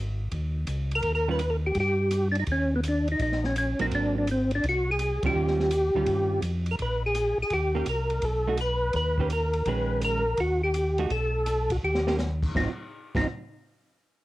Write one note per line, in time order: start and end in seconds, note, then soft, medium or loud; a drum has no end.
0.00 0.29 G#1 medium
0.32 0.65 D#2 medium
0.32 kick soft
0.32 ride medium
0.67 1.01 C#2 medium
0.67 hi-hat pedal medium
0.67 ride medium
0.91 ride soft
0.95 1.12 A#4 medium
1.02 1.72 D#2 medium
1.02 kick soft
1.02 ride medium
1.15 1.29 A#4 medium
1.28 1.39 D#3 medium
1.28 1.39 G3 medium
1.28 1.39 C#4 medium
1.28 1.40 F4 medium
1.28 1.50 B4 medium
1.39 hi-hat pedal medium
1.39 ride medium
1.50 1.57 A#4 medium
1.66 1.78 G4 medium
1.75 2.44 G2 medium
1.75 kick soft
1.75 ride medium
1.80 2.28 G4 medium
2.11 hi-hat pedal medium
2.11 ride medium
2.32 2.37 D4 medium
2.32 ride soft
2.40 2.44 D#4 medium
2.47 3.16 D#2 medium
2.47 kick soft
2.47 ride medium
2.52 2.74 C#4 medium
2.76 2.80 B3 medium
2.84 hi-hat pedal medium
2.84 ride medium
2.88 3.08 D4 medium
3.08 ride soft
3.12 3.21 D#4 medium
3.19 3.75 A#1 medium
3.19 3.45 D#4 medium
3.19 kick soft
3.19 ride medium
3.32 snare soft
3.44 3.56 C#4 medium
3.44 snare soft
3.56 3.79 C#4 medium
3.56 hi-hat pedal medium
3.56 ride medium
3.79 3.91 A#1 medium
3.79 4.25 F#3 medium
3.79 4.26 A#3 medium
3.79 4.26 C4 medium
3.79 3.87 D#4 medium
3.79 ride soft
3.91 4.60 G#1 medium
3.91 4.15 D4 medium
3.91 kick soft
3.91 ride medium
4.18 4.29 D4 medium
4.27 hi-hat pedal soft
4.27 ride medium
4.31 4.52 C4 medium
4.51 ride soft
4.55 4.66 D4 medium
4.63 5.19 C2 medium
4.63 kick soft
4.63 ride medium
4.69 4.91 F#4 medium
4.91 5.23 G#4 medium
4.99 hi-hat pedal soft
4.99 ride medium
5.23 5.29 C2 soft
5.23 5.69 D#3 medium
5.23 5.70 G3 medium
5.23 5.70 C#4 medium
5.23 5.70 F4 medium
5.23 6.41 G4 medium
5.23 kick medium
5.23 ride medium
5.35 5.91 D#2 medium
5.47 snare soft
5.60 snare soft
5.71 hi-hat pedal medium
5.71 ride medium
5.95 6.06 D2 medium
5.95 6.41 D#3 medium
5.95 6.41 G3 medium
5.95 6.41 C#4 medium
5.95 6.41 F4 medium
6.06 6.40 G2 medium
6.06 kick soft
6.06 ride medium
6.41 6.76 F2 medium
6.41 hi-hat pedal soft
6.41 ride medium
6.66 ride soft
6.71 6.76 A#4 medium
6.79 7.35 A#1 medium
6.79 7.03 B4 medium
6.79 kick soft
6.79 ride medium
7.06 7.38 G#4 medium
7.15 hi-hat pedal medium
7.15 ride medium
7.38 7.44 A#1 soft
7.42 7.53 G#4 medium
7.50 7.84 D#2 medium
7.50 7.86 G4 medium
7.50 kick soft
7.50 ride medium
7.75 7.86 D#3 medium
7.75 7.86 A#3 medium
7.75 7.86 C#4 medium
7.75 7.86 G4 medium
7.86 8.20 C2 medium
7.86 8.25 A#4 medium
7.86 hi-hat pedal soft
7.86 ride medium
8.10 ride soft
8.22 8.91 B1 medium
8.22 8.57 A4 medium
8.22 kick soft
8.22 ride medium
8.48 8.58 A3 medium
8.48 8.58 D#4 soft
8.48 8.59 F#4 medium
8.57 8.95 B4 medium
8.57 hi-hat pedal soft
8.57 ride medium
8.93 9.63 D#2 medium
8.93 9.29 B4 medium
8.93 kick soft
8.93 ride soft
9.18 9.30 D#3 medium
9.18 9.30 A#3 medium
9.18 9.30 C#4 medium
9.18 9.30 G4 medium
9.18 kick soft
9.30 9.68 A#4 medium
9.30 hi-hat pedal medium
9.30 ride medium
9.53 ride soft
9.66 10.35 A#1 medium
9.66 10.22 D#3 medium
9.66 10.22 G#3 medium
9.66 10.23 C#4 medium
9.66 10.01 B4 medium
9.66 kick soft
9.66 ride soft
10.01 10.41 A#4 medium
10.01 hi-hat pedal medium
10.01 ride medium
10.37 11.07 D#2 medium
10.37 10.61 F#4 medium
10.37 kick soft
10.37 ride medium
10.63 11.08 G4 medium
10.74 hi-hat pedal medium
10.74 ride medium
10.98 11.10 A3 medium
10.98 11.10 D#4 medium
10.98 11.10 F#4 medium
10.98 ride soft
11.10 11.79 B1 medium
11.10 11.72 A4 medium
11.10 kick soft
11.10 ride soft
11.46 hi-hat pedal medium
11.46 ride medium
11.70 11.77 F#4 medium
11.70 kick soft
11.70 ride medium
11.83 12.52 D#2 medium
11.83 12.17 G4 medium
11.95 snare soft
12.07 12.18 D#3 soft
12.07 12.18 A#3 medium
12.07 12.18 C#4 medium
12.07 12.18 G4 medium
12.07 snare medium
12.18 snare medium
12.18 hi-hat pedal soft
12.43 kick medium
12.43 crash medium
12.55 12.68 G#1 medium
12.55 12.70 F#3 medium
12.55 12.70 C4 medium
12.55 12.69 D#4 medium
12.55 12.70 F4 medium
12.55 kick medium
12.55 snare medium
13.15 13.26 G#1 medium
13.15 13.26 F#3 medium
13.15 13.27 C4 medium
13.15 13.27 D#4 medium
13.15 13.27 F4 medium
13.15 kick medium
13.15 snare medium
13.15 crash medium